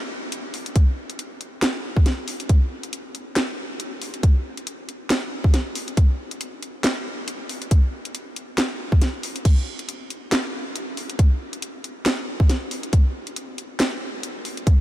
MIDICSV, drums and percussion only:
0, 0, Header, 1, 2, 480
1, 0, Start_track
1, 0, Tempo, 434783
1, 834, Time_signature, 4, 2, 24, 8
1, 16346, End_track
2, 0, Start_track
2, 0, Title_t, "Drums"
2, 355, Note_on_c, 9, 42, 80
2, 465, Note_off_c, 9, 42, 0
2, 594, Note_on_c, 9, 46, 89
2, 704, Note_off_c, 9, 46, 0
2, 730, Note_on_c, 9, 42, 54
2, 834, Note_off_c, 9, 42, 0
2, 834, Note_on_c, 9, 42, 74
2, 835, Note_on_c, 9, 36, 124
2, 944, Note_off_c, 9, 42, 0
2, 945, Note_off_c, 9, 36, 0
2, 1210, Note_on_c, 9, 42, 50
2, 1314, Note_off_c, 9, 42, 0
2, 1314, Note_on_c, 9, 42, 75
2, 1425, Note_off_c, 9, 42, 0
2, 1553, Note_on_c, 9, 42, 51
2, 1664, Note_off_c, 9, 42, 0
2, 1792, Note_on_c, 9, 38, 127
2, 1792, Note_on_c, 9, 39, 90
2, 1792, Note_on_c, 9, 42, 78
2, 1903, Note_off_c, 9, 38, 0
2, 1903, Note_off_c, 9, 39, 0
2, 1903, Note_off_c, 9, 42, 0
2, 2170, Note_on_c, 9, 36, 108
2, 2273, Note_on_c, 9, 38, 66
2, 2273, Note_on_c, 9, 42, 79
2, 2280, Note_off_c, 9, 36, 0
2, 2383, Note_off_c, 9, 38, 0
2, 2383, Note_off_c, 9, 42, 0
2, 2513, Note_on_c, 9, 46, 92
2, 2623, Note_off_c, 9, 46, 0
2, 2649, Note_on_c, 9, 42, 52
2, 2753, Note_off_c, 9, 42, 0
2, 2753, Note_on_c, 9, 42, 75
2, 2754, Note_on_c, 9, 36, 123
2, 2863, Note_off_c, 9, 42, 0
2, 2864, Note_off_c, 9, 36, 0
2, 3129, Note_on_c, 9, 42, 50
2, 3233, Note_off_c, 9, 42, 0
2, 3233, Note_on_c, 9, 42, 80
2, 3344, Note_off_c, 9, 42, 0
2, 3474, Note_on_c, 9, 42, 50
2, 3585, Note_off_c, 9, 42, 0
2, 3713, Note_on_c, 9, 38, 119
2, 3713, Note_on_c, 9, 39, 90
2, 3713, Note_on_c, 9, 42, 80
2, 3824, Note_off_c, 9, 38, 0
2, 3824, Note_off_c, 9, 39, 0
2, 3824, Note_off_c, 9, 42, 0
2, 4192, Note_on_c, 9, 42, 78
2, 4303, Note_off_c, 9, 42, 0
2, 4433, Note_on_c, 9, 46, 98
2, 4543, Note_off_c, 9, 46, 0
2, 4568, Note_on_c, 9, 42, 51
2, 4673, Note_off_c, 9, 42, 0
2, 4673, Note_on_c, 9, 36, 121
2, 4673, Note_on_c, 9, 42, 78
2, 4784, Note_off_c, 9, 36, 0
2, 4784, Note_off_c, 9, 42, 0
2, 5050, Note_on_c, 9, 42, 52
2, 5154, Note_off_c, 9, 42, 0
2, 5154, Note_on_c, 9, 42, 82
2, 5265, Note_off_c, 9, 42, 0
2, 5395, Note_on_c, 9, 42, 54
2, 5505, Note_off_c, 9, 42, 0
2, 5634, Note_on_c, 9, 38, 119
2, 5634, Note_on_c, 9, 39, 86
2, 5634, Note_on_c, 9, 42, 81
2, 5744, Note_off_c, 9, 38, 0
2, 5744, Note_off_c, 9, 39, 0
2, 5744, Note_off_c, 9, 42, 0
2, 6009, Note_on_c, 9, 36, 101
2, 6113, Note_on_c, 9, 38, 61
2, 6113, Note_on_c, 9, 42, 79
2, 6119, Note_off_c, 9, 36, 0
2, 6224, Note_off_c, 9, 38, 0
2, 6224, Note_off_c, 9, 42, 0
2, 6353, Note_on_c, 9, 46, 101
2, 6463, Note_off_c, 9, 46, 0
2, 6490, Note_on_c, 9, 42, 54
2, 6594, Note_off_c, 9, 42, 0
2, 6594, Note_on_c, 9, 36, 116
2, 6594, Note_on_c, 9, 42, 84
2, 6704, Note_off_c, 9, 36, 0
2, 6704, Note_off_c, 9, 42, 0
2, 6970, Note_on_c, 9, 42, 55
2, 7074, Note_off_c, 9, 42, 0
2, 7074, Note_on_c, 9, 42, 85
2, 7184, Note_off_c, 9, 42, 0
2, 7314, Note_on_c, 9, 42, 55
2, 7425, Note_off_c, 9, 42, 0
2, 7553, Note_on_c, 9, 38, 119
2, 7553, Note_on_c, 9, 39, 89
2, 7553, Note_on_c, 9, 42, 82
2, 7664, Note_off_c, 9, 38, 0
2, 7664, Note_off_c, 9, 39, 0
2, 7664, Note_off_c, 9, 42, 0
2, 8034, Note_on_c, 9, 42, 85
2, 8144, Note_off_c, 9, 42, 0
2, 8274, Note_on_c, 9, 46, 102
2, 8384, Note_off_c, 9, 46, 0
2, 8409, Note_on_c, 9, 42, 58
2, 8514, Note_off_c, 9, 42, 0
2, 8514, Note_on_c, 9, 36, 119
2, 8514, Note_on_c, 9, 42, 85
2, 8624, Note_off_c, 9, 36, 0
2, 8624, Note_off_c, 9, 42, 0
2, 8890, Note_on_c, 9, 42, 54
2, 8993, Note_off_c, 9, 42, 0
2, 8993, Note_on_c, 9, 42, 84
2, 9104, Note_off_c, 9, 42, 0
2, 9234, Note_on_c, 9, 42, 57
2, 9344, Note_off_c, 9, 42, 0
2, 9473, Note_on_c, 9, 38, 113
2, 9473, Note_on_c, 9, 39, 94
2, 9473, Note_on_c, 9, 42, 87
2, 9583, Note_off_c, 9, 38, 0
2, 9583, Note_off_c, 9, 39, 0
2, 9583, Note_off_c, 9, 42, 0
2, 9849, Note_on_c, 9, 36, 104
2, 9953, Note_on_c, 9, 38, 62
2, 9953, Note_on_c, 9, 42, 88
2, 9960, Note_off_c, 9, 36, 0
2, 10063, Note_off_c, 9, 38, 0
2, 10063, Note_off_c, 9, 42, 0
2, 10194, Note_on_c, 9, 46, 95
2, 10304, Note_off_c, 9, 46, 0
2, 10330, Note_on_c, 9, 42, 57
2, 10434, Note_off_c, 9, 42, 0
2, 10434, Note_on_c, 9, 36, 125
2, 10434, Note_on_c, 9, 42, 82
2, 10434, Note_on_c, 9, 49, 78
2, 10545, Note_off_c, 9, 36, 0
2, 10545, Note_off_c, 9, 42, 0
2, 10545, Note_off_c, 9, 49, 0
2, 10810, Note_on_c, 9, 42, 56
2, 10914, Note_off_c, 9, 42, 0
2, 10914, Note_on_c, 9, 42, 84
2, 11025, Note_off_c, 9, 42, 0
2, 11155, Note_on_c, 9, 42, 57
2, 11265, Note_off_c, 9, 42, 0
2, 11395, Note_on_c, 9, 38, 125
2, 11395, Note_on_c, 9, 39, 95
2, 11395, Note_on_c, 9, 42, 86
2, 11505, Note_off_c, 9, 38, 0
2, 11505, Note_off_c, 9, 39, 0
2, 11505, Note_off_c, 9, 42, 0
2, 11874, Note_on_c, 9, 42, 84
2, 11984, Note_off_c, 9, 42, 0
2, 12114, Note_on_c, 9, 46, 95
2, 12224, Note_off_c, 9, 46, 0
2, 12249, Note_on_c, 9, 42, 57
2, 12354, Note_on_c, 9, 36, 127
2, 12355, Note_off_c, 9, 42, 0
2, 12355, Note_on_c, 9, 42, 83
2, 12464, Note_off_c, 9, 36, 0
2, 12465, Note_off_c, 9, 42, 0
2, 12730, Note_on_c, 9, 42, 54
2, 12832, Note_off_c, 9, 42, 0
2, 12832, Note_on_c, 9, 42, 84
2, 12943, Note_off_c, 9, 42, 0
2, 13074, Note_on_c, 9, 42, 53
2, 13184, Note_off_c, 9, 42, 0
2, 13313, Note_on_c, 9, 38, 124
2, 13313, Note_on_c, 9, 39, 93
2, 13313, Note_on_c, 9, 42, 85
2, 13423, Note_off_c, 9, 38, 0
2, 13423, Note_off_c, 9, 39, 0
2, 13423, Note_off_c, 9, 42, 0
2, 13689, Note_on_c, 9, 36, 109
2, 13794, Note_on_c, 9, 38, 68
2, 13794, Note_on_c, 9, 42, 85
2, 13800, Note_off_c, 9, 36, 0
2, 13905, Note_off_c, 9, 38, 0
2, 13905, Note_off_c, 9, 42, 0
2, 14034, Note_on_c, 9, 46, 91
2, 14144, Note_off_c, 9, 46, 0
2, 14168, Note_on_c, 9, 42, 55
2, 14273, Note_off_c, 9, 42, 0
2, 14273, Note_on_c, 9, 42, 80
2, 14274, Note_on_c, 9, 36, 127
2, 14384, Note_off_c, 9, 42, 0
2, 14385, Note_off_c, 9, 36, 0
2, 14649, Note_on_c, 9, 42, 53
2, 14754, Note_off_c, 9, 42, 0
2, 14754, Note_on_c, 9, 42, 81
2, 14864, Note_off_c, 9, 42, 0
2, 14994, Note_on_c, 9, 42, 53
2, 15105, Note_off_c, 9, 42, 0
2, 15234, Note_on_c, 9, 38, 127
2, 15234, Note_on_c, 9, 39, 95
2, 15234, Note_on_c, 9, 42, 80
2, 15344, Note_off_c, 9, 38, 0
2, 15344, Note_off_c, 9, 39, 0
2, 15344, Note_off_c, 9, 42, 0
2, 15714, Note_on_c, 9, 42, 80
2, 15824, Note_off_c, 9, 42, 0
2, 15953, Note_on_c, 9, 46, 93
2, 16064, Note_off_c, 9, 46, 0
2, 16089, Note_on_c, 9, 42, 54
2, 16193, Note_on_c, 9, 36, 127
2, 16194, Note_off_c, 9, 42, 0
2, 16194, Note_on_c, 9, 42, 77
2, 16304, Note_off_c, 9, 36, 0
2, 16304, Note_off_c, 9, 42, 0
2, 16346, End_track
0, 0, End_of_file